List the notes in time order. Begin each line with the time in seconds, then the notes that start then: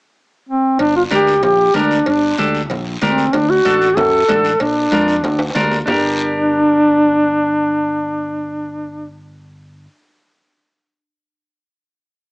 0.49 C4
0.79 G1 D4, cowbell, high conga, long guiro
0.96 F4
1.11 D2 D4 G4 A#4, cowbell, high conga, short guiro
1.27 short guiro
1.43 A#1 G4, cowbell, high conga, low conga, long guiro
1.74 D2 D4 G4 A#4, cowbell, high conga, low timbale, short guiro
1.91 short guiro
2.06 G1 D4, cowbell, high conga, long guiro
2.38 D2 D4 G4 A4, cowbell, high conga, short guiro
2.55 short guiro
2.70 A#1, cowbell, high conga, low conga, long guiro
3.02 D2 C4 D4 G4 A#4, cowbell, high conga, low conga, short guiro
3.18 short guiro
3.33 D2 D4, cowbell, high conga, low conga, long guiro
3.50 F#4
3.65 A1 D4 F#4 A4, cowbell, high conga, short guiro
3.82 short guiro
3.97 F#2 A4, cowbell, high conga, low conga, long guiro
4.28 A1 D4 F#4 A4, cowbell, high conga, low timbale, short guiro
4.44 short guiro
4.60 A#1 D4, cowbell, high conga, long guiro
4.92 F2 D4 F4 A#4, cowbell, high conga, short guiro
5.08 short guiro
5.24 D2, cowbell, high conga, low conga, long guiro
5.39 high timbale
5.50 high timbale
5.55 D2 D4 F4 A#4, cowbell, high conga, low conga, short guiro
5.61 low timbale
5.71 low timbale, short guiro
5.86 G1 D4 G4 A#4, low conga, low timbale, long guiro